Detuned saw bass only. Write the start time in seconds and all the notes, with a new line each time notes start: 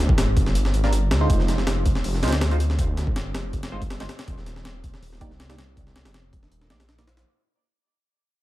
Already playing: D2
0.09 G#1
0.37 G1
0.74 G#1
0.93 G1
1.11 D2
1.30 F1
2.04 F1
2.23 D2
3.07 G1
3.35 F1
3.72 G1
4.28 D#1
5.02 D#1
5.21 C2
6.05 F1
6.33 D#1
6.70 A#1